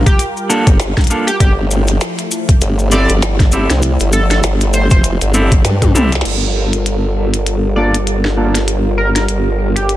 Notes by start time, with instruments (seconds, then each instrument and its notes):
Already playing: analog synth pad G3 F4 G4 A#4
0.06 analog synth lead G4, kick, closed hi-hat, maracas
0.19 closed hi-hat, maracas
0.37 maracas
0.49 clean electric guitar A#3 D4 F4 A4, maracas
0.67 wobble bass G1, kick, closed hi-hat, maracas
0.80 snare, closed hi-hat, maracas
0.97 kick, snare, closed hi-hat
1.01 closed hi-hat
1.04 closed hi-hat
1.07 clean electric guitar A#3 D4 F4, closed hi-hat, maracas
1.11 clean electric guitar A4
1.27 analog synth lead G4, closed hi-hat, maracas
1.40 wobble bass G1, analog synth pad F3 A3 E4, analog synth lead G4, kick, closed hi-hat, maracas
1.71 maracas
1.87 closed hi-hat, maracas
2.01 snare, closed hi-hat, maracas
2.18 closed hi-hat, maracas
2.31 maracas
2.49 kick, closed hi-hat, maracas
2.61 wobble bass G1, closed hi-hat, maracas
2.79 maracas
2.92 clean electric guitar C4 E4 G4 A4, analog synth lead D5, maracas
3.09 wobble bass G1, closed hi-hat, maracas
3.22 snare, closed hi-hat, maracas
3.40 kick, snare, closed hi-hat
3.52 clean electric guitar C4 E4 G4 A4, maracas
3.70 wobble bass C2, snare, closed hi-hat, maracas
3.82 closed hi-hat, maracas
4.00 wobble bass G1, closed hi-hat, maracas
4.13 analog synth lead A4, maracas
4.30 analog synth lead A4, snare, closed hi-hat, maracas
4.43 wobble bass G1, snare, closed hi-hat, maracas
4.60 closed hi-hat, maracas
4.73 analog synth lead C5, maracas
4.90 wobble bass F1, analog synth lead C5, kick, closed hi-hat, maracas
5.04 closed hi-hat, maracas
5.21 wobble bass G1, closed hi-hat, maracas
5.34 clean electric guitar C4 E4 G4 A4, maracas
5.51 kick, closed hi-hat, maracas
5.65 wobble bass G2, snare, closed hi-hat, maracas
5.82 kick, closed hi-hat, high tom, maracas
5.95 wobble bass C2, clean electric guitar C4 E4 G4 A4, mid tom, maracas
6.12 snare, closed hi-hat, maracas
6.15 snare
6.21 analog synth pad F4, snare
6.25 wobble bass G1, analog synth pad G3 A4 A#4, closed hi-hat, crash
6.73 closed hi-hat
6.86 closed hi-hat
7.34 closed hi-hat
7.46 closed hi-hat
7.76 clean electric guitar A#3 D4 F4 A4, analog synth lead D5
7.94 closed hi-hat
8.07 closed hi-hat
8.25 snare
8.37 clean electric guitar A#3 D4 F4 A4
8.55 snare, closed hi-hat
8.68 analog synth pad G4, closed hi-hat
8.98 analog synth lead A#4
9.15 analog synth lead A#4, snare, closed hi-hat
9.29 closed hi-hat
9.76 analog synth lead G4, closed hi-hat
9.89 closed hi-hat